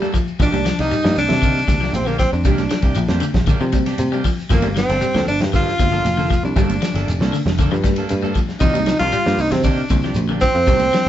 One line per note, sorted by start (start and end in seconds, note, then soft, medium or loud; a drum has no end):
0.00 0.10 G3 medium
0.00 0.11 G3 medium
0.00 0.17 A#3 medium
0.00 0.17 D4 medium
0.00 0.17 A4 medium
0.00 high conga medium
0.00 shekere soft
0.14 0.33 F3 medium
0.14 kick medium
0.14 ride bell medium
0.14 shekere medium
0.28 shekere soft
0.40 0.72 C2 loud
0.40 0.56 D#3 medium
0.40 0.50 F3 loud
0.40 0.56 D4 medium
0.40 0.82 D4 loud
0.40 0.56 G4 medium
0.40 muted clean electric guitar stroke medium
0.40 kick medium
0.40 ride bell medium
0.40 high conga soft
0.40 low conga medium
0.40 shekere loud
0.53 0.62 G3 medium
0.53 high conga loud
0.53 shekere soft
0.65 0.84 F3 medium
0.65 snare medium
0.65 ride bell medium
0.65 shekere medium
0.79 0.89 C2 medium
0.79 0.95 A#3 soft
0.79 0.95 D4 medium
0.79 1.18 D#4 loud
0.79 0.94 G4 medium
0.79 snare soft
0.79 ride bell medium
0.79 shekere soft
0.91 1.01 G3 medium
0.91 ride bell soft
0.91 high conga soft
0.91 shekere medium
1.04 1.15 G2 loud
1.04 1.23 F3 medium
1.04 1.21 A#3 medium
1.04 1.20 D4 medium
1.04 1.20 G4 medium
1.04 snare medium
1.04 high conga loud
1.04 shekere soft
1.16 1.28 C2 loud
1.16 1.91 D4 medium
1.16 1.91 D4 loud
1.16 open hi-hat medium
1.16 shekere medium
1.29 1.61 C3 loud
1.29 snare medium
1.29 ride bell medium
1.29 low conga medium
1.29 shekere soft
1.42 1.61 D3 medium
1.42 1.58 D#3 medium
1.42 1.59 A#3 medium
1.42 1.59 D4 medium
1.42 1.59 G4 medium
1.42 kick medium
1.42 ride bell medium
1.42 high conga soft
1.42 shekere medium
1.56 snare soft
1.56 shekere soft
1.68 1.89 C2 medium
1.68 1.78 D3 medium
1.68 kick medium
1.68 ride bell medium
1.68 high conga medium
1.68 shekere medium
1.81 2.00 F3 medium
1.81 1.97 A#3 soft
1.81 1.97 D4 soft
1.81 1.97 G4 medium
1.81 snare soft
1.81 shekere soft
1.93 2.26 A#1 medium
1.93 2.08 C4 medium
1.93 2.09 C4 medium
1.93 ride bell medium
1.93 high conga medium
1.93 shekere loud
2.06 2.16 D3 medium
2.06 2.20 A#3 medium
2.06 2.18 A#3 medium
2.06 2.23 A#3 soft
2.06 2.23 D4 medium
2.06 2.22 G4 medium
2.06 shekere soft
2.19 2.38 F3 medium
2.19 2.31 C4 loud
2.19 2.31 C4 medium
2.19 kick medium
2.19 ride bell medium
2.19 high conga medium
2.19 shekere medium
2.32 2.43 F2 medium
2.32 3.31 D4 medium
2.32 shekere soft
2.45 2.67 C2 loud
2.45 2.61 D#3 medium
2.45 2.64 G3 loud
2.45 2.61 A#3 medium
2.45 2.61 D4 medium
2.45 2.61 G4 medium
2.45 kick loud
2.45 ride bell medium
2.45 high conga soft
2.45 low conga medium
2.45 shekere loud
2.58 snare soft
2.58 high conga loud
2.58 shekere soft
2.70 2.90 F3 medium
2.70 snare medium
2.70 ride bell medium
2.70 shekere medium
2.82 2.94 C2 medium
2.82 3.00 A#3 soft
2.82 2.99 D4 soft
2.82 2.99 G4 medium
2.82 kick medium
2.82 ride bell medium
2.82 shekere soft
2.95 3.07 A#1 loud
2.95 3.15 F3 medium
2.95 ride bell medium
2.95 high conga soft
2.95 shekere medium
3.08 3.20 F2 medium
3.08 3.25 A#3 medium
3.08 3.25 D4 medium
3.08 3.25 G4 medium
3.08 snare medium
3.08 high conga medium
3.08 shekere soft
3.20 3.41 D3 medium
3.20 ride bell medium
3.20 shekere medium
3.34 3.56 A#1 medium
3.34 kick medium
3.34 snare medium
3.34 low conga medium
3.34 shekere soft
3.47 3.57 D3 medium
3.47 3.63 D#3 medium
3.47 3.64 A#3 medium
3.47 3.64 D4 medium
3.47 3.64 G4 medium
3.47 kick medium
3.47 ride bell medium
3.47 high conga soft
3.47 shekere loud
3.61 3.93 C3 medium
3.61 3.70 F3 medium
3.61 shekere soft
3.72 3.92 G3 medium
3.72 kick medium
3.72 ride bell medium
3.72 high conga medium
3.72 shekere medium
3.86 4.02 D4 medium
3.86 4.02 G4 medium
3.86 snare soft
3.86 ride bell medium
3.86 shekere soft
3.98 4.21 C3 medium
3.98 ride bell medium
3.98 high conga medium
3.98 shekere loud
4.12 4.22 G3 medium
4.12 4.28 A#3 medium
4.12 4.28 D4 medium
4.12 4.28 G4 medium
4.12 shekere soft
4.24 4.44 F3 medium
4.24 kick medium
4.24 open hi-hat medium
4.24 shekere medium
4.39 shekere soft
4.50 4.83 G1 loud
4.50 4.60 F3 loud
4.50 4.66 F3 medium
4.50 4.75 A#3 medium
4.50 4.67 A#3 medium
4.50 4.76 A#3 medium
4.50 4.67 D4 medium
4.50 4.67 A4 medium
4.50 kick loud
4.50 ride bell medium
4.50 high conga soft
4.50 low conga medium
4.50 shekere loud
4.62 4.73 G3 medium
4.62 high conga loud
4.62 shekere soft
4.76 4.95 F3 medium
4.76 5.25 C4 loud
4.76 5.25 C4 medium
4.76 snare medium
4.76 ride bell medium
4.76 shekere medium
4.89 5.00 G1 loud
4.89 5.06 A#3 soft
4.89 5.06 D4 medium
4.89 5.05 A4 medium
4.89 snare soft
4.89 ride bell medium
4.89 shekere soft
5.01 5.11 G3 medium
5.01 ride bell medium
5.01 high conga soft
5.01 shekere medium
5.14 5.26 D2 loud
5.14 5.34 F3 medium
5.14 5.31 A#3 soft
5.14 5.31 D4 soft
5.14 5.31 A4 medium
5.14 snare medium
5.14 high conga medium
5.14 shekere soft
5.27 5.39 G1 medium
5.27 5.40 D4 loud
5.27 5.41 D4 medium
5.27 open hi-hat medium
5.27 shekere medium
5.41 5.73 G2 medium
5.41 snare medium
5.41 ride bell medium
5.41 low conga medium
5.41 shekere soft
5.53 5.72 D3 medium
5.53 5.69 F3 medium
5.53 5.69 A#3 medium
5.53 5.69 D4 medium
5.53 6.41 F4 loud
5.53 6.41 F4 medium
5.53 5.69 A4 medium
5.53 kick medium
5.53 ride bell medium
5.53 high conga soft
5.53 shekere medium
5.68 snare soft
5.68 shekere soft
5.79 6.01 G1 medium
5.79 5.89 D3 medium
5.79 kick medium
5.79 snare soft
5.79 ride bell medium
5.79 high conga medium
5.79 shekere medium
5.92 6.11 F3 medium
5.92 6.08 A#3 soft
5.92 6.08 D4 soft
5.92 6.08 A4 medium
5.92 shekere soft
6.05 6.37 F1 loud
6.05 ride bell medium
6.05 high conga medium
6.05 shekere loud
6.17 6.27 D3 medium
6.17 6.34 A#3 medium
6.17 6.34 A4 medium
6.17 muted clean electric guitar stroke medium
6.17 high conga medium
6.17 shekere soft
6.30 6.49 F3 medium
6.30 kick medium
6.30 ride bell medium
6.30 shekere medium
6.43 6.54 C2 medium
6.43 7.43 D4 loud
6.43 7.44 D4 medium
6.43 shekere soft
6.56 6.78 G1 loud
6.56 6.72 F3 medium
6.56 6.76 G3 loud
6.56 6.72 A#3 medium
6.56 6.72 D4 medium
6.56 6.72 A4 medium
6.56 kick loud
6.56 ride bell soft
6.56 high conga soft
6.56 low conga medium
6.56 shekere loud
6.70 high conga loud
6.70 shekere soft
6.82 7.01 F3 medium
6.82 snare medium
6.82 ride bell medium
6.82 shekere medium
6.95 7.05 G1 medium
6.95 7.12 A#3 soft
6.95 7.11 D4 soft
6.95 7.11 A4 medium
6.95 snare soft
6.95 ride bell medium
6.95 shekere soft
7.08 7.19 F1 loud
7.08 ride bell soft
7.08 high conga soft
7.08 shekere medium
7.20 7.31 C2 loud
7.20 7.37 A#3 medium
7.20 7.37 D4 medium
7.20 7.37 A4 medium
7.20 snare medium
7.20 high conga loud
7.20 shekere soft
7.33 7.52 D3 loud
7.33 open hi-hat medium
7.33 shekere medium
7.46 7.68 F1 medium
7.46 snare medium
7.46 low conga medium
7.46 shekere soft
7.58 7.69 D3 medium
7.58 7.75 F3 medium
7.58 7.75 A#3 medium
7.58 7.75 D4 medium
7.58 7.75 A4 medium
7.58 kick medium
7.58 ride bell medium
7.58 high conga soft
7.58 shekere medium
7.72 8.04 G2 loud
7.72 7.81 F3 medium
7.72 shekere soft
7.84 8.03 G3 medium
7.84 kick medium
7.84 snare soft
7.84 ride bell medium
7.84 high conga medium
7.84 shekere medium
7.96 8.14 A#3 medium
7.96 8.13 D4 medium
7.96 8.13 A4 medium
7.96 ride bell medium
7.96 shekere soft
8.09 8.32 G2 medium
8.09 ride bell medium
8.09 high conga medium
8.09 shekere loud
8.22 8.32 G3 medium
8.22 8.40 A#3 medium
8.22 8.39 D4 medium
8.22 8.39 A4 medium
8.22 high conga medium
8.22 shekere soft
8.35 8.55 F3 medium
8.35 kick medium
8.35 ride bell medium
8.35 shekere medium
8.48 snare soft
8.48 shekere soft
8.60 8.94 C2 loud
8.60 8.77 D#3 medium
8.60 8.71 F3 medium
8.60 8.78 A#3 medium
8.60 8.78 D4 medium
8.60 8.97 D#4 loud
8.60 8.98 D#4 loud
8.60 8.78 G4 medium
8.60 kick loud
8.60 ride bell medium
8.60 high conga soft
8.60 low conga medium
8.60 shekere loud
8.74 8.84 G3 medium
8.74 high conga loud
8.74 shekere soft
8.86 9.06 F3 medium
8.86 snare medium
8.86 ride bell medium
8.86 shekere medium
8.99 9.11 C2 medium
8.99 9.16 A#3 soft
8.99 9.16 D4 medium
8.99 9.42 F4 loud
8.99 9.43 F4 loud
8.99 9.16 G4 medium
8.99 snare soft
8.99 ride bell medium
8.99 shekere soft
9.12 9.23 G3 medium
9.12 ride bell medium
9.12 high conga soft
9.12 shekere medium
9.25 9.37 G2 medium
9.25 9.42 A#3 medium
9.25 9.42 D4 medium
9.25 9.41 G4 medium
9.25 snare medium
9.25 high conga medium
9.25 shekere soft
9.38 9.50 C2 medium
9.38 9.53 D#4 loud
9.38 9.57 D#4 medium
9.38 open hi-hat medium
9.38 shekere medium
9.51 9.84 C3 medium
9.51 9.63 C4 medium
9.51 snare medium
9.51 ride bell medium
9.51 low conga medium
9.51 shekere soft
9.55 9.66 C4 medium
9.63 9.84 D3 medium
9.63 9.80 D#3 medium
9.63 9.81 A#3 medium
9.63 10.12 D4 medium
9.63 9.81 D4 medium
9.63 9.81 G4 medium
9.63 kick medium
9.63 snare soft
9.63 ride bell medium
9.63 high conga soft
9.63 shekere medium
9.69 10.15 D4 medium
9.77 shekere soft
9.89 10.12 C2 loud
9.89 10.00 D3 medium
9.89 kick medium
9.89 snare soft
9.89 ride bell medium
9.89 high conga loud
9.89 shekere medium
10.02 10.23 F3 medium
10.02 10.19 D4 medium
10.02 10.19 G4 medium
10.02 muted clean electric guitar stroke soft
10.02 snare soft
10.02 shekere soft
10.14 10.48 A#1 medium
10.14 ride bell medium
10.14 high conga medium
10.14 shekere loud
10.28 10.39 D3 medium
10.28 10.45 A#3 soft
10.28 10.45 D4 medium
10.28 10.45 G4 medium
10.28 shekere soft
10.40 10.61 F3 medium
10.40 11.09 C4 loud
10.40 kick medium
10.40 ride bell medium
10.40 shekere medium
10.54 10.66 F2 medium
10.54 shekere soft
10.67 10.89 C2 loud
10.67 10.83 D#3 medium
10.67 10.86 G3 medium
10.67 10.83 A#3 medium
10.67 10.84 D4 medium
10.67 muted clean electric guitar stroke medium
10.67 kick loud
10.67 ride bell soft
10.67 high conga soft
10.67 low conga medium
10.67 shekere loud
10.80 high conga loud
10.80 shekere soft
10.93 11.09 F3 medium
10.93 snare medium
10.93 ride bell medium
10.93 shekere medium